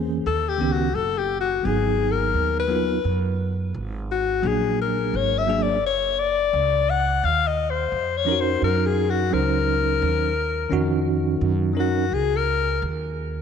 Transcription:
Already playing: E2 E3 A#3 C#4 G#4
0.26 D#2 A4
0.49 G4
0.58 C#2 D#3 B3 C#4 G4
0.73 F#4
0.95 F#1 A4
1.18 G4
1.40 F#4
1.63 G#1 F#3 B3 D#4 G#4
2.12 A#4
2.34 D#2
2.60 B4
2.68 F#3 B3 D#4 F4
3.04 F#2
3.74 G#1
4.11 F#4
4.42 A#1 F#3 A#3 D4 G#4
4.47 G#4
4.81 A#4
5.14 G#1 C#5
5.38 E5
5.47 F#3 A#3 D4 G#4
5.63 D5
5.83 F#1 C#5
6.19 D5
6.53 C#2
6.90 F#5
7.23 D#2 F5
7.47 D#5
7.70 C5
7.92 F2
8.17 C#5
8.25 F3 C#4 D#4 A#4
8.32 F#4
8.40 C5
8.62 F#2 A#4
8.86 G#4
9.10 F#4
9.30 C#2 F#3 C#4 D#4 A#4 C5
10.02 D#2
10.70 F2 D#3 C#4 D#4 F#4
11.41 F#2
11.74 F#3 C#4 D#4 A#4
11.80 F#4
12.12 C#2 G#4
12.36 A#4
12.82 D#2

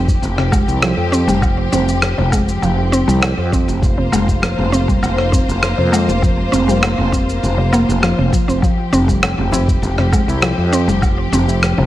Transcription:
Already playing: F1 F3 C4 G4
0.08 kick, shaker
0.22 F1, shaker
0.38 C3, cross-stick
0.52 G#3, kick, low woodblock, shaker
0.68 C2, shaker
0.82 F3, cross-stick, shaker
0.97 F2
1.12 C4, shaker
1.27 F1 G3, shaker
1.42 kick, low woodblock, shaker
1.72 F1 C4, shaker
1.89 shaker
2.02 cross-stick, shaker
2.18 F1 C3
2.32 G#3, kick, low woodblock, shaker
2.49 shaker
2.62 F1 F3, shaker
2.92 C4, shaker
3.08 C2 G3, shaker
3.23 cross-stick, low woodblock, shaker
3.37 F2
3.52 C4, kick, shaker
3.68 F1, shaker
3.81 A#3 F4 C5, kick, shaker
3.98 C3
4.12 F1 G#3, low woodblock, shaker
4.28 kick, shaker
4.42 F3, cross-stick, shaker
4.58 F1
4.72 C4, shaker
4.88 G3, kick, shaker
5.02 F1, low woodblock, shaker
5.18 cross-stick
5.32 C4, kick, shaker
5.48 F1, shaker
5.63 cross-stick, shaker
5.78 F2 C3
5.92 G#3, low woodblock, shaker
6.08 F1, shaker
6.22 F3, kick, shaker
6.52 F1 C4, shaker
6.68 G3, shaker
6.83 cross-stick, low woodblock, shaker
6.98 F1
7.12 C4, kick, shaker
7.29 shaker
7.43 F1, shaker
7.58 C3
7.73 A#3, low woodblock, shaker
7.89 F1, shaker
8.03 F3, cross-stick, shaker
8.18 F1 C3
8.33 F3, kick, shaker
8.48 F1 C4, shaker
8.62 F3 C4 G4, kick, shaker
8.92 F1 C4, tabla ge, shaker
9.08 G3, kick, tabla tin, shaker
9.23 cross-stick, low woodblock, shaker
9.38 F1
9.52 C4, tabla na, tabla tin, tabla ge, shaker
9.68 kick, shaker
9.82 F1, shaker
9.98 C3, cross-stick, tabla ge
10.12 G#3, kick, low woodblock, shaker
10.28 C2, tabla na, tabla tin, shaker
10.42 F3, cross-stick, shaker
10.58 F2, tabla tin
10.73 C4, shaker
10.87 F1 G3, shaker
11.02 kick, low woodblock, shaker
11.32 F1 C4, tabla ge, shaker
11.49 tabla na, tabla tin, shaker
11.63 cross-stick, shaker
11.78 F1 C3

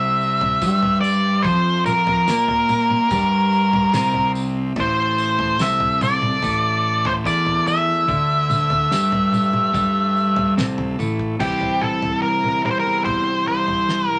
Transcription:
Already playing: C2 C3 C4 G4 C5 E5
0.21 tambourine
0.41 floor tom
0.62 G2 G3, kick, tambourine
0.83 floor tom
1.01 D5, tambourine
1.42 F2 F3 C5, kick, floor tom, tambourine
1.86 A#4, mid tom, tambourine
2.07 floor tom
2.28 A#2 A#3, snare, tambourine
2.48 floor tom
2.69 mid tom, tambourine
2.90 mid tom
3.10 G2 G3, kick, floor tom, tambourine
3.52 tambourine
3.73 floor tom
3.93 C2 C3, snare, mid tom, tambourine
4.14 floor tom
4.35 tambourine
4.76 A1 A2 E3 A3 A4, kick, floor tom, tambourine
4.80 C5
5.18 tambourine
5.39 floor tom
5.59 C2 C3 E5, snare, tambourine
5.80 floor tom
6.01 D5, mid tom, tambourine
6.22 mid tom
6.42 A1 A2, kick, floor tom, tambourine
7.05 C5, floor tom
7.25 E2 E3 D5, kick, tambourine
7.46 floor tom
7.67 E5, tambourine
8.08 D2 D3, kick, floor tom, tambourine
8.50 mid tom, tambourine
8.70 floor tom
8.91 G2 G3, snare, tambourine
9.12 floor tom
9.33 mid tom, tambourine
9.53 mid tom
9.74 G2 G3, kick, floor tom, tambourine
10.17 tambourine
10.36 floor tom
10.57 C2 C3, snare, mid tom, tambourine
10.78 floor tom
10.99 A1 A2, high tom, tambourine
11.19 kick
11.39 C2 C3 E3 G3 C4 E4 G4, kick, floor tom, crash
11.61 floor tom
11.81 A4, mid tom
12.02 floor tom
12.22 C2 A#4
12.44 mid tom
12.64 C3 E3 G3 C4 E4 A#4, mid tom
12.71 C5
12.80 A#4
12.86 E2
13.05 C5, kick, floor tom
13.48 C2 C5
13.68 floor tom
13.89 snare
14.09 C2 A#4

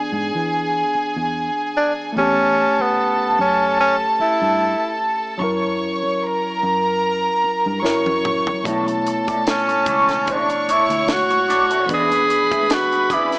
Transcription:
Already playing: E3 B3 D4 G#4 G#5
0.12 G#2
0.35 E3
0.95 muted fingered electric bass stroke
1.16 E2
1.77 D4
2.12 E2 A3 C4
2.17 C#4 G4 A4 A5
2.22 C#4
2.79 B3, muted fingered electric bass stroke
3.39 F#2 C#4
3.80 C#4
4.19 E4, muted fingered electric bass stroke
4.42 G2
5.38 F#2 F#3 C#4 E4 C#5 C#6
5.44 A#4
6.03 muted fingered electric bass stroke
6.22 A#4 A#5
6.63 F#2
7.44 muted fingered electric bass stroke
7.66 G2
7.82 F#2 F#3 C#4 E4 A#4 C#5 C#6, snare
8.06 high tom
8.25 mid tom
8.47 floor tom
8.63 B1 B2 A3 D4 E4 A4 C#5 A5, kick, closed hi-hat, muted conga, low conga
8.67 B3 E4 A4 C#5
8.86 muted clean electric guitar stroke, closed hi-hat, muted conga
9.06 muted clean electric guitar stroke, closed hi-hat
9.27 D4 E4 A4 D5, muted fingered electric bass stroke, kick, closed hi-hat, high conga
9.45 snare, closed hi-hat, muted conga
9.51 C#4
9.67 muted clean electric guitar stroke, closed hi-hat, muted conga
9.86 C#2 D4 E4 A4 C#5, kick, closed hi-hat, low conga
10.09 muted clean electric guitar stroke, snare, closed hi-hat
10.26 D4 E4 A4 C#5 C#6, kick, closed hi-hat, low conga
10.30 D4 C#5
10.50 muted clean electric guitar stroke, closed hi-hat
10.68 D4 E4 A4 C#5, muted fingered electric bass stroke, closed hi-hat
10.89 D2, muted clean electric guitar stroke, closed hi-hat, high conga
11.07 muted clean electric guitar stroke, snare, closed hi-hat, high conga
11.13 F#4
11.30 muted clean electric guitar stroke, closed hi-hat, muted conga, high conga
11.48 D4 E4 A4 D5, snare, closed hi-hat
11.70 D4 E4 A4 C#5, closed hi-hat
11.86 E2 E3 B3 E4 B4 B5, kick, closed hi-hat, muted conga, low conga
11.90 D4 G#4 D5
12.11 muted clean electric guitar stroke, closed hi-hat, muted conga
12.30 muted clean electric guitar stroke, closed hi-hat
12.51 B3 E4 G#4 E5, muted fingered electric bass stroke, kick, closed hi-hat, high conga
12.70 F#4, snare, closed hi-hat, muted conga
12.92 muted clean electric guitar stroke, closed hi-hat, muted conga
13.10 B3 E4 G#4 D5, kick, closed hi-hat, low conga
13.32 snare, closed hi-hat

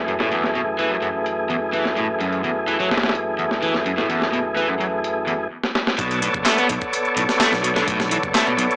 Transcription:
Already playing: F#2 E3 A3 G#4
0.08 F#2, closed hi-hat
0.20 A2, snare
0.32 E2, closed hi-hat
0.44 snare
0.55 B2, closed hi-hat
0.79 E3, closed hi-hat
0.91 F#2
1.02 F#2, closed hi-hat
1.26 closed hi-hat
1.50 E2, closed hi-hat
1.73 E3, closed hi-hat
1.85 snare
1.97 A2, closed hi-hat
2.20 F#2, closed hi-hat
2.33 closed hi-hat
2.44 E2, closed hi-hat
2.68 E3, closed hi-hat
2.80 F#3, closed hi-hat
2.91 F#2, snare, closed hi-hat
2.98 snare, closed hi-hat
3.03 snare, closed hi-hat
3.09 snare, closed hi-hat
3.15 closed hi-hat
3.39 E2, closed hi-hat
3.51 snare
3.62 E3, closed hi-hat
3.74 snare
3.86 F#2, closed hi-hat
3.98 A2, snare
4.10 E2, closed hi-hat
4.22 snare
4.33 B2, closed hi-hat
4.56 E3, closed hi-hat
4.68 F#2
4.80 F#2, closed hi-hat
5.04 closed hi-hat
5.27 E2, closed hi-hat
5.64 snare
5.75 snare
5.87 snare
5.98 B1 B2 B3 A4 C#5 D5, kick, closed hi-hat
6.11 closed hi-hat
6.22 A2, closed hi-hat
6.34 F#1, kick, closed hi-hat
6.45 A3, snare, clap, closed hi-hat
6.57 B3, closed hi-hat
6.69 B1 B2, kick, closed hi-hat
6.81 kick, closed hi-hat
6.93 closed hi-hat
7.05 closed hi-hat
7.16 B1 A2, closed hi-hat
7.29 snare, closed hi-hat
7.40 A3, snare, clap, closed hi-hat
7.52 B1, snare, closed hi-hat
7.64 B2, closed hi-hat
7.76 D3, snare, closed hi-hat
7.87 B1 A2, kick, closed hi-hat
8.00 snare, closed hi-hat
8.11 E3, closed hi-hat
8.23 F#1, kick, closed hi-hat
8.35 A3, snare, clap, closed hi-hat
8.47 B2, closed hi-hat
8.58 B1 B2, closed hi-hat
8.71 closed hi-hat

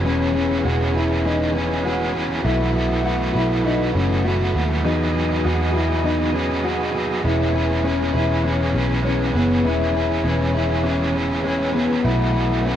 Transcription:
Already playing: E3 B3 C#4 G#4
0.04 E1 E3 G#3 C#4 G#4 B4
0.32 G#4 B4
0.37 C#4
0.64 E1 G#3 C#4 F#4 G#4
0.68 B4
0.93 E4 G#4 B4
0.97 C#4
1.23 E3 G#3 C#4 D#4 G#4 B4
1.53 C#4 G#4 B4
1.57 C#4
1.83 G#3 C#4 F#4 G#4
1.87 B4
2.13 G#4 B4
2.17 C#4
2.43 B1 B2 E3 F#3 A3 B3 E4 F#4 B4
2.73 E4 F#4 B4
2.77 A3
3.03 A3 E4 F#4
3.07 B4
3.33 B1 E4 F#4 B4
3.37 A3
3.63 B2 E3 A3 D#4 E4 F#4 B4
3.93 F#1 C#4 E4 F#4 B4
3.98 A3
4.24 A3 E4 F#4
4.28 B4
4.54 D#2 E4 F#4 B4
4.58 A3
4.84 E2 E3 B3 D#4 G#4 B4 D#5
5.14 G#4 B4
5.18 D#4
5.44 E2 B3 D#4 F#4 G#4 B4
5.73 E4 G#4 B4
5.77 D#4
6.03 E3 B3 D#4 G#4 B4
6.33 C#4 D#4 G#4 B4
6.62 B3 D#4 F#4 G#4
6.67 B4
6.92 G#4 B4
6.96 D#4
7.23 E1 E3 G#3 B3 C#4 E4 G#4 B4
7.53 G#4 B4
7.57 C#4
7.83 G#3 C#4 G#4
7.87 B4
8.13 E1 E4 G#4 B4
8.17 C#4
8.43 E3 G#3 C#4 G#4 B4
8.73 B1 G#4 B4
8.77 C#4
9.03 G#3 C#4 G#4
9.07 B4
9.34 F#1 B3 G#4 B4
9.38 C#4
9.64 E1 E3 G#3 C#4 E4 G#4 B4
9.94 G#4 B4
9.98 C#4
10.24 E1 G#3 C#4 G#4
10.28 B4
10.53 E4 G#4 B4
10.58 C#4
10.84 E3 G#3 C#4 G#4 B4
11.14 G#4 B4
11.18 C#4
11.43 G#3 C#4 G#4
11.48 B4
11.73 B3 G#4 B4
11.78 C#4
12.03 B1 B2 E3 F#3 A3 E4 F#4 B4
12.32 E4 F#4 B4
12.37 A3
12.63 A3 C#4 E4 F#4
12.68 B4

